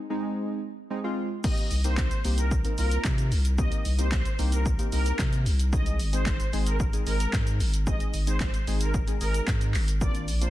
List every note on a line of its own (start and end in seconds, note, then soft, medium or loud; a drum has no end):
0.10 0.59 G#3 loud
0.10 0.59 C4 medium
0.10 0.59 D#4 loud
0.90 0.99 G#3 medium
0.90 0.99 C4 medium
0.90 0.99 D#4 loud
1.04 1.28 G#3 medium
1.04 1.29 C4 medium
1.04 1.29 F4 loud
1.44 1.69 A#3 medium
1.44 1.69 C4 medium
1.44 1.69 D#4 medium
1.44 1.69 G4 medium
1.44 1.54 D#5 loud
1.44 kick loud
1.44 crash loud
1.44 shaker medium
1.57 closed hi-hat soft
1.57 shaker soft
1.71 2.11 C2 medium
1.71 open hi-hat medium
1.71 shaker medium
1.84 2.09 A#3 medium
1.84 2.09 C4 medium
1.84 2.09 D#4 medium
1.84 2.09 G4 medium
1.84 1.94 C5 medium
1.84 closed hi-hat medium
1.84 shaker medium
1.98 2.07 C5 loud
1.98 kick loud
1.98 snare medium
1.98 clap loud
1.98 shaker medium
2.11 closed hi-hat medium
2.11 shaker medium
2.24 2.64 C2 medium
2.24 2.49 A#3 medium
2.24 2.49 C4 medium
2.24 2.49 D#4 medium
2.24 2.49 G4 medium
2.24 open hi-hat medium
2.24 shaker medium
2.38 2.47 A#4 medium
2.38 closed hi-hat medium
2.38 shaker loud
2.51 kick loud
2.51 shaker medium
2.65 2.73 A#3 medium
2.65 2.73 C4 medium
2.65 2.73 D#4 medium
2.65 2.73 A#4 medium
2.65 closed hi-hat medium
2.65 shaker soft
2.78 2.98 C2 loud
2.78 3.27 A#3 medium
2.78 3.27 C4 medium
2.78 3.27 D#4 medium
2.78 3.27 F4 medium
2.78 2.97 A#4 medium
2.78 open hi-hat medium
2.78 shaker medium
2.91 closed hi-hat medium
2.91 shaker medium
3.04 3.33 C3 loud
3.04 kick loud
3.04 snare medium
3.04 clap loud
3.04 shaker medium
3.18 closed hi-hat medium
3.18 shaker medium
3.32 3.71 C2 loud
3.32 open hi-hat medium
3.32 shaker medium
3.45 closed hi-hat medium
3.45 shaker medium
3.58 3.83 A#3 medium
3.58 3.83 C4 medium
3.58 3.83 D#4 medium
3.58 3.83 G4 medium
3.58 3.68 D#5 loud
3.58 kick loud
3.58 shaker medium
3.72 closed hi-hat soft
3.72 shaker soft
3.85 4.25 C2 medium
3.85 open hi-hat medium
3.85 shaker medium
3.98 4.23 A#3 medium
3.98 4.23 C4 medium
3.98 4.23 D#4 medium
3.98 4.23 G4 medium
3.98 4.08 C5 medium
3.98 closed hi-hat medium
3.98 shaker medium
4.12 4.21 C5 medium
4.12 kick loud
4.12 snare loud
4.12 clap loud
4.12 shaker medium
4.25 closed hi-hat medium
4.25 shaker medium
4.38 4.79 C2 loud
4.38 4.63 A#3 medium
4.38 4.63 C4 medium
4.38 4.63 D#4 medium
4.38 4.63 G4 medium
4.38 open hi-hat medium
4.38 shaker medium
4.52 4.62 A#4 medium
4.52 closed hi-hat medium
4.52 shaker medium
4.66 kick loud
4.66 shaker medium
4.79 4.87 A#3 medium
4.79 4.87 C4 medium
4.79 4.87 D#4 medium
4.79 4.87 G4 medium
4.79 closed hi-hat medium
4.79 shaker medium
4.92 5.12 C2 medium
4.92 5.41 A#3 medium
4.92 5.41 C4 medium
4.92 5.41 D#4 medium
4.92 5.41 G4 medium
4.92 5.11 A#4 medium
4.92 open hi-hat medium
4.92 shaker medium
5.06 closed hi-hat medium
5.06 shaker medium
5.19 5.47 C3 loud
5.19 kick loud
5.19 snare loud
5.19 clap loud
5.19 shaker medium
5.33 closed hi-hat medium
5.33 shaker medium
5.46 6.01 C2 loud
5.46 open hi-hat medium
5.46 shaker medium
5.59 closed hi-hat medium
5.59 shaker medium
5.72 5.97 G#3 medium
5.72 5.97 C4 medium
5.72 5.97 D#4 medium
5.72 5.97 G#4 medium
5.72 5.82 D#5 loud
5.72 kick loud
5.72 shaker medium
5.86 closed hi-hat soft
5.86 shaker soft
5.99 6.39 G#1 loud
5.99 open hi-hat medium
5.99 shaker medium
6.13 6.37 G#3 medium
6.13 6.37 C4 medium
6.13 6.37 D#4 medium
6.13 6.38 G#4 medium
6.13 6.22 C5 medium
6.13 closed hi-hat medium
6.13 shaker medium
6.26 6.36 C5 loud
6.26 kick loud
6.26 snare medium
6.26 clap loud
6.26 shaker medium
6.40 closed hi-hat soft
6.40 shaker medium
6.53 6.93 G#1 medium
6.53 6.77 G#3 medium
6.53 6.78 C4 medium
6.53 6.78 D#4 medium
6.53 6.78 G#4 medium
6.53 open hi-hat medium
6.53 shaker medium
6.66 6.76 A#4 medium
6.66 closed hi-hat medium
6.66 shaker medium
6.80 kick loud
6.80 shaker medium
6.93 7.01 G#3 medium
6.93 7.01 C4 medium
6.93 7.01 D#4 medium
6.93 7.02 G#4 medium
6.93 closed hi-hat medium
6.93 shaker medium
7.06 7.27 G#1 loud
7.06 7.56 G#3 medium
7.06 7.56 C4 medium
7.06 7.56 D#4 medium
7.06 7.56 G#4 medium
7.06 7.25 A#4 medium
7.06 open hi-hat medium
7.06 shaker medium
7.20 closed hi-hat medium
7.20 shaker medium
7.33 7.62 G#2 loud
7.33 kick loud
7.33 snare loud
7.33 clap loud
7.33 shaker medium
7.47 closed hi-hat medium
7.47 shaker medium
7.60 8.00 G#1 loud
7.60 open hi-hat medium
7.60 shaker medium
7.74 closed hi-hat medium
7.74 shaker medium
7.87 8.11 G#3 medium
7.87 8.11 C4 medium
7.87 8.11 D#4 medium
7.87 8.12 G#4 medium
7.87 7.96 D#5 loud
7.87 kick loud
7.87 shaker medium
8.00 closed hi-hat soft
8.00 shaker soft
8.14 8.53 G#1 loud
8.14 open hi-hat medium
8.14 shaker medium
8.27 8.52 G#3 medium
8.27 8.52 C4 medium
8.27 8.52 D#4 medium
8.27 8.52 G#4 medium
8.27 8.37 C5 medium
8.27 closed hi-hat medium
8.27 shaker medium
8.40 8.50 C5 medium
8.40 kick loud
8.40 snare loud
8.40 clap loud
8.40 shaker medium
8.54 closed hi-hat medium
8.54 shaker medium
8.67 9.07 G#1 loud
8.67 8.92 G#3 medium
8.67 8.92 C4 medium
8.67 8.92 D#4 medium
8.67 8.92 G#4 medium
8.67 open hi-hat medium
8.67 shaker medium
8.81 8.90 A#4 medium
8.81 closed hi-hat loud
8.81 shaker medium
8.94 kick loud
8.94 shaker medium
9.07 9.16 G#3 medium
9.07 9.16 C4 medium
9.07 9.16 D#4 medium
9.07 9.16 G#4 medium
9.07 closed hi-hat medium
9.07 shaker medium
9.21 9.41 G#1 medium
9.21 9.70 G#3 medium
9.21 9.70 C4 medium
9.21 9.70 D#4 medium
9.21 9.70 G#4 medium
9.21 9.40 A#4 medium
9.21 open hi-hat medium
9.21 shaker medium
9.34 closed hi-hat medium
9.34 shaker medium
9.47 9.76 G#2 loud
9.47 kick loud
9.47 snare loud
9.47 clap loud
9.47 shaker medium
9.61 closed hi-hat medium
9.61 shaker medium
9.74 10.30 G#1 loud
9.74 clap medium
9.74 open hi-hat medium
9.74 shaker medium
9.88 closed hi-hat medium
9.88 shaker medium
10.01 10.26 A#3 medium
10.01 10.26 C4 medium
10.01 10.26 D4 medium
10.01 10.26 F4 medium
10.01 10.11 D5 loud
10.01 kick loud
10.01 shaker medium
10.15 closed hi-hat soft
10.15 shaker soft
10.28 10.50 A#1 medium
10.28 open hi-hat medium
10.28 shaker medium
10.41 10.50 A#3 medium
10.41 10.50 C4 medium
10.41 10.50 D4 medium
10.41 10.50 F4 medium
10.41 10.50 C5 medium
10.41 closed hi-hat medium
10.41 shaker medium